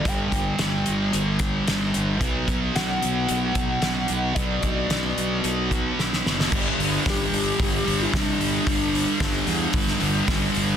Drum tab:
CC |----------------|----------------|----------------|x---------------|
HH |x-x-x-x-x-x-x-x-|x-x-x-x-x-x-x-x-|x-x-x-x-x-x-----|--o-o-o-o-o-o-o-|
SD |----o-------o---|----o-------o---|----o-------oooo|----o-------o---|
BD |o-o-------o-----|o-o-------o-----|o-o-------o-----|o---o---o---o---|

CC |----------------|
HH |o-o-o-o-o-o-o-o-|
SD |----o----o--o---|
BD |o---o---o---o---|